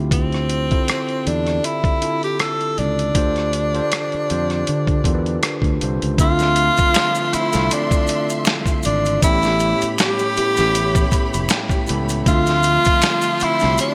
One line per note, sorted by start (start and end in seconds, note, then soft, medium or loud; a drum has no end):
0.00 0.71 D2 medium
0.00 0.58 D3 medium
0.00 0.59 C4 medium
0.00 0.59 E4 medium
0.00 0.60 F4 medium
0.00 0.63 G4 medium
0.11 1.29 C4 medium
0.11 kick medium
0.11 closed hi-hat medium
0.32 cross-stick soft
0.32 closed hi-hat soft
0.49 closed hi-hat medium
0.69 1.19 D3 medium
0.69 1.20 C4 medium
0.69 1.20 E4 medium
0.69 1.20 F4 medium
0.69 1.21 A4 medium
0.69 kick medium
0.69 closed hi-hat soft
0.88 cross-stick loud
0.88 closed hi-hat medium
1.09 closed hi-hat soft
1.24 1.58 E2 medium
1.24 1.93 D3 medium
1.24 1.94 C4 medium
1.24 1.67 D4 medium
1.24 1.94 E4 medium
1.24 1.95 G4 medium
1.24 1.95 A4 medium
1.24 closed hi-hat medium
1.47 cross-stick soft
1.47 closed hi-hat soft
1.64 2.23 E4 medium
1.64 closed hi-hat medium
1.84 kick medium
1.84 closed hi-hat soft
2.00 3.04 D3 medium
2.00 3.04 C4 medium
2.00 3.05 E4 medium
2.00 3.05 F4 medium
2.00 3.05 A4 medium
2.00 closed hi-hat medium
2.23 2.42 G4 medium
2.23 closed hi-hat soft
2.39 2.80 A4 medium
2.39 cross-stick medium
2.39 closed hi-hat medium
2.61 closed hi-hat soft
2.78 3.10 C#2 medium
2.78 5.81 D4 medium
2.78 closed hi-hat medium
2.99 closed hi-hat soft
3.14 3.80 D2 medium
3.14 3.67 D3 medium
3.14 3.67 D4 medium
3.14 3.67 F4 medium
3.14 3.68 G4 medium
3.14 3.68 A4 medium
3.14 3.68 C5 medium
3.14 kick loud
3.14 closed hi-hat medium
3.36 cross-stick soft
3.36 closed hi-hat soft
3.53 closed hi-hat medium
3.73 4.23 D3 medium
3.73 4.23 D4 medium
3.73 4.23 F4 medium
3.73 4.24 G4 medium
3.73 4.24 A4 medium
3.73 4.24 C5 medium
3.73 closed hi-hat soft
3.92 cross-stick loud
3.92 closed hi-hat medium
4.12 muted fingered electric bass stroke soft
4.12 closed hi-hat soft
4.28 4.62 F2 medium
4.28 4.97 D3 medium
4.28 4.97 D4 medium
4.28 4.98 F4 medium
4.28 4.98 G4 medium
4.28 4.99 A4 medium
4.28 4.99 C5 medium
4.28 closed hi-hat medium
4.50 cross-stick soft
4.50 closed hi-hat soft
4.67 5.00 D3 medium
4.67 closed hi-hat medium
4.87 kick medium
4.87 closed hi-hat soft
5.04 5.37 E2 medium
5.04 5.73 D3 medium
5.04 5.73 D4 medium
5.04 5.74 F4 medium
5.04 5.74 G4 medium
5.04 5.74 A4 medium
5.04 5.13 A#4 medium
5.04 kick medium
5.04 closed hi-hat medium
5.14 5.78 B4 medium
5.26 closed hi-hat soft
5.43 cross-stick medium
5.43 closed hi-hat medium
5.62 5.77 D2 medium
5.62 kick medium
5.62 closed hi-hat soft
5.80 5.99 C2 medium
5.80 6.15 D3 medium
5.80 6.15 D4 medium
5.80 6.15 F4 medium
5.80 6.16 G4 medium
5.80 6.16 A4 medium
5.80 6.16 C5 medium
5.80 closed hi-hat medium
6.02 6.17 C#2 medium
6.02 closed hi-hat soft
6.18 6.69 D2 loud
6.18 7.22 D3 medium
6.18 9.19 F3 medium
6.18 7.22 A3 medium
6.18 7.23 C4 medium
6.18 7.36 F4 loud
6.18 7.23 F4 medium
6.18 9.19 E5 medium
6.18 7.23 E5 medium
6.18 9.19 C6 medium
6.18 kick loud
6.18 closed hi-hat medium
6.18 maracas medium
6.39 snare soft
6.39 closed hi-hat soft
6.39 maracas soft
6.56 closed hi-hat medium
6.56 maracas soft
6.77 muted fingered electric bass stroke soft
6.77 kick medium
6.77 closed hi-hat soft
6.77 maracas soft
6.94 finger snap medium
6.94 snare loud
6.94 closed hi-hat loud
6.94 maracas medium
7.15 closed hi-hat soft
7.15 maracas soft
7.32 7.51 D3 medium
7.32 7.51 A3 medium
7.32 7.52 C4 medium
7.32 7.75 E4 medium
7.32 7.52 E4 medium
7.32 7.53 F4 medium
7.32 muted fingered electric bass stroke soft
7.32 closed hi-hat medium
7.32 maracas soft
7.53 7.69 C2 medium
7.53 8.88 D3 medium
7.53 8.88 A3 medium
7.53 8.88 C4 medium
7.53 8.89 E4 medium
7.53 8.89 F4 medium
7.53 snare soft
7.53 closed hi-hat soft
7.53 maracas soft
7.71 8.48 D4 medium
7.71 closed hi-hat medium
7.71 maracas medium
7.91 kick loud
7.91 closed hi-hat soft
7.91 maracas soft
8.07 closed hi-hat medium
8.07 maracas soft
8.29 closed hi-hat soft
8.29 maracas medium
8.45 finger snap medium
8.45 snare loud
8.45 closed hi-hat medium
8.45 maracas medium
8.66 kick medium
8.66 closed hi-hat soft
8.66 maracas soft
8.83 9.18 G#1 medium
8.83 9.20 D4 medium
8.83 closed hi-hat medium
8.83 maracas soft
9.05 closed hi-hat medium
9.05 maracas soft
9.21 9.73 A1 loud
9.21 10.25 A2 medium
9.21 10.26 A3 medium
9.21 10.26 B3 medium
9.21 10.27 C#4 medium
9.21 9.95 E4 medium
9.21 12.22 G4 medium
9.21 12.22 C#5 medium
9.21 12.22 B5 medium
9.21 kick loud
9.21 closed hi-hat medium
9.21 maracas medium
9.25 10.27 G4 loud
9.43 snare soft
9.43 closed hi-hat soft
9.43 maracas soft
9.59 closed hi-hat medium
9.59 maracas soft
9.81 muted fingered electric bass stroke soft
9.81 closed hi-hat soft
9.81 maracas soft
9.98 11.47 G4 loud
9.98 finger snap medium
9.98 snare loud
9.98 closed hi-hat loud
9.98 maracas medium
10.19 closed hi-hat soft
10.19 maracas soft
10.36 10.55 A2 medium
10.36 10.55 A3 medium
10.36 10.56 B3 medium
10.36 10.56 C#4 medium
10.36 10.56 E4 medium
10.36 muted fingered electric bass stroke soft
10.36 closed hi-hat medium
10.36 maracas soft
10.56 11.05 A1 medium
10.56 11.76 A2 medium
10.56 11.76 A3 medium
10.56 11.76 B3 medium
10.56 11.77 C#4 medium
10.56 11.77 E4 medium
10.56 snare soft
10.56 closed hi-hat soft
10.56 maracas medium
10.75 closed hi-hat medium
10.75 maracas medium
10.95 kick loud
10.95 closed hi-hat soft
10.95 maracas soft
11.12 11.48 E5 medium
11.12 muted fingered electric bass stroke soft
11.12 kick medium
11.12 closed hi-hat medium
11.12 maracas soft
11.34 11.48 F1 medium
11.34 closed hi-hat soft
11.34 maracas soft
11.49 11.86 G5 medium
11.49 finger snap medium
11.49 snare loud
11.49 closed hi-hat loud
11.49 maracas medium
11.69 kick loud
11.69 closed hi-hat soft
11.69 maracas soft
11.87 12.21 C#2 medium
11.87 12.22 A2 medium
11.87 12.23 A3 medium
11.87 12.23 B3 medium
11.87 12.24 C#4 medium
11.87 12.24 B5 medium
11.87 closed hi-hat medium
11.87 maracas soft
11.91 12.24 A4 medium
12.09 closed hi-hat medium
12.09 maracas soft
12.26 12.77 D2 loud
12.26 13.30 D3 medium
12.26 13.94 F3 medium
12.26 13.30 A3 medium
12.26 13.30 C4 medium
12.26 13.45 F4 loud
12.26 13.31 F4 loud
12.26 13.94 E5 medium
12.26 13.31 E5 medium
12.26 13.94 C6 medium
12.26 kick loud
12.26 closed hi-hat medium
12.26 maracas medium
12.46 snare soft
12.46 closed hi-hat soft
12.46 maracas soft
12.63 closed hi-hat medium
12.63 maracas soft
12.84 muted fingered electric bass stroke soft
12.84 kick medium
12.84 closed hi-hat soft
12.84 maracas soft
13.02 finger snap medium
13.02 snare loud
13.02 closed hi-hat loud
13.02 maracas medium
13.21 closed hi-hat soft
13.21 maracas medium
13.40 13.59 D3 medium
13.40 13.59 A3 medium
13.40 13.59 C4 medium
13.40 13.60 E4 medium
13.40 13.80 E4 loud
13.40 13.60 F4 medium
13.40 muted fingered electric bass stroke soft
13.40 closed hi-hat medium
13.40 maracas soft
13.59 13.94 D3 medium
13.59 13.94 A3 medium
13.59 13.94 C4 medium
13.59 13.94 E4 medium
13.59 13.68 F#4 medium
13.59 snare soft
13.59 closed hi-hat soft
13.59 maracas soft
13.64 13.77 C2 loud
13.70 13.94 G4 medium
13.78 13.94 D4 medium
13.78 closed hi-hat medium
13.78 maracas medium